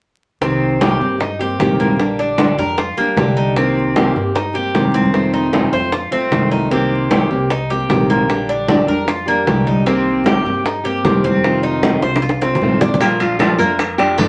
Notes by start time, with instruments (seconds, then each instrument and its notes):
0.41 upright bass C2, steel-string acoustic guitar C3 D#3 A#3 C4 G4, cuban tres C4, high bongo, high conga
0.62 high conga
0.81 steel-string acoustic guitar C3 D#3 A#3 C4 G4, cuban tres G4, high bongo, high conga
1.00 upright bass G2, steel-string acoustic guitar A#3 C4 G4, high bongo
1.20 cuban tres D#4, muted steel-string acoustic guitar stroke, high bongo, high conga
1.39 steel-string acoustic guitar A#3 C4 G4, cuban tres G4, high bongo, high conga
1.59 upright bass A#1, steel-string acoustic guitar C3 D#3 A#3 C4 G4, high bongo, low bongo, high conga
1.80 cuban tres A#3, high bongo, high conga
1.98 steel-string acoustic guitar D3 G3 D4 G4, high bongo, high conga
2.19 cuban tres D4, high bongo, high conga
2.38 steel-string acoustic guitar D3 G3 D4 G4, high bongo, high conga
2.57 upright bass F2, steel-string acoustic guitar G3 D4 G4, cuban tres A#4, high bongo, high conga
2.77 cuban tres F4, muted steel-string acoustic guitar stroke, high bongo, high conga
2.97 upright bass D2, steel-string acoustic guitar G3 D4 G4, cuban tres A#3, high bongo, high conga
3.17 upright bass C2, steel-string acoustic guitar D3 G3 D4 G4, high bongo, low bongo, high conga
3.37 cuban tres D#4
3.56 steel-string acoustic guitar C3 D#3 A#3 C4 G4, cuban tres C4, high bongo, high conga
3.76 high conga
3.96 steel-string acoustic guitar C3 D#3 A#3 C4 G4, cuban tres G4, high bongo, high conga
4.15 upright bass G2, steel-string acoustic guitar A#3 C4 G4, high bongo
4.34 cuban tres D#4, muted steel-string acoustic guitar stroke, high bongo, high conga
4.54 steel-string acoustic guitar A#3 C4 G4, cuban tres G4, high bongo, high conga
4.74 upright bass F2, steel-string acoustic guitar C3 D#3 A#3 C4 G4, high bongo, low bongo, high conga
4.94 cuban tres C4, high bongo, high conga
5.13 steel-string acoustic guitar C3 D#3 A3 C4 F4, high bongo, high conga
5.34 cuban tres D#4, high bongo, high conga
5.53 steel-string acoustic guitar C3 D#3 A3 C4 F4, high bongo, high conga
5.72 upright bass F2, steel-string acoustic guitar A3 C4 F4, cuban tres C5, high bongo, high conga
5.92 cuban tres F4, muted steel-string acoustic guitar stroke, high bongo, high conga
6.11 upright bass D2, steel-string acoustic guitar A3 C4 F4, cuban tres C4, high bongo, high conga
6.31 upright bass C2, steel-string acoustic guitar C3 D#3 A3 C4 F4, high bongo, low bongo, high conga
6.51 cuban tres D#4, high conga
6.71 steel-string acoustic guitar C3 D#3 A#3 C4 G4, cuban tres C4, high bongo, high conga
6.91 high conga
7.11 steel-string acoustic guitar C3 D#3 A#3 C4 G4, cuban tres G4, high bongo, high conga
7.30 upright bass C2, steel-string acoustic guitar A#3 C4 G4, high bongo
7.50 cuban tres D#4, muted steel-string acoustic guitar stroke, high bongo, high conga
7.70 steel-string acoustic guitar A#3 C4 G4, cuban tres G4, high bongo, high conga
7.89 upright bass A#1, steel-string acoustic guitar C3 D#3 A#3 C4 G4, high bongo, low bongo, high conga
8.09 cuban tres A#3, high bongo, high conga
8.29 steel-string acoustic guitar D3 G3 D4 G4, high bongo, high conga
8.49 cuban tres D4, high bongo, high conga
8.68 steel-string acoustic guitar D3 G3 D4 G4, high bongo, high conga
8.87 upright bass F2, steel-string acoustic guitar G3 D4 G4, cuban tres A#4, high bongo, high conga
9.07 cuban tres F4, muted steel-string acoustic guitar stroke, high bongo, high conga
9.26 steel-string acoustic guitar G3 D4 G4, cuban tres A#3, high bongo, high conga
9.46 upright bass C2, steel-string acoustic guitar D3 G3 D4 G4, high bongo, low bongo, high conga
9.67 cuban tres D#4, high conga
9.86 steel-string acoustic guitar C3 D#3 A#3 C4 G4, cuban tres C4, high bongo
10.06 high conga
10.25 steel-string acoustic guitar C3 D#3 A#3 C4 G4, cuban tres G4, high bongo, high conga
10.45 upright bass G2, steel-string acoustic guitar A#3 C4 G4, high bongo
10.64 cuban tres D#4, muted steel-string acoustic guitar stroke, high bongo, high conga
10.84 steel-string acoustic guitar A#3 C4 G4, cuban tres G4, high bongo, high conga
11.04 upright bass F2, steel-string acoustic guitar C3 D#3 A#3 C4 G4, high bongo, low bongo, high conga
11.24 cuban tres C4, high bongo, high conga
11.43 steel-string acoustic guitar C3 D#3 A3 C4 F4, high bongo, high conga
11.63 cuban tres D#4, high bongo, high conga
11.83 steel-string acoustic guitar C3 D#3 A3 C4 F4, high bongo, high conga
12.02 upright bass C2, steel-string acoustic guitar A3 C4 F4, cuban tres C5, high bongo, high conga
12.16 high bongo
12.22 cuban tres F4, muted steel-string acoustic guitar stroke, high conga
12.29 high bongo
12.41 upright bass C2, steel-string acoustic guitar A3 C4 F4, cuban tres C4, high bongo, high conga
12.55 low bongo
12.61 upright bass A#1, steel-string acoustic guitar C3 D#3 A3 C4 F4, high conga
12.81 cuban tres D4, low bongo, high conga
12.94 low bongo
13.01 steel-string acoustic guitar F3 A3 D4 F4, cuban tres A#3, nylon-string guitar G4, high bongo, high conga, high timbale, maracas
13.20 cuban tres F4, nylon-string guitar F4, high conga, high timbale, maracas
13.39 steel-string acoustic guitar F3 A3 D4 F4, nylon-string guitar A4, high bongo, high conga, high timbale, maracas
13.58 upright bass F2, steel-string acoustic guitar A3 D4 F4, cuban tres A#3, nylon-string guitar A#4, high bongo, maracas
13.79 muted steel-string acoustic guitar stroke, high bongo, high conga, high timbale, maracas
13.98 steel-string acoustic guitar A3 D4 F4, cuban tres D4, nylon-string guitar G4, high bongo, high conga, high timbale, maracas
14.18 upright bass G2, steel-string acoustic guitar F3 A3 D4 F4, nylon-string guitar A4, high bongo, low bongo, high conga, high timbale, maracas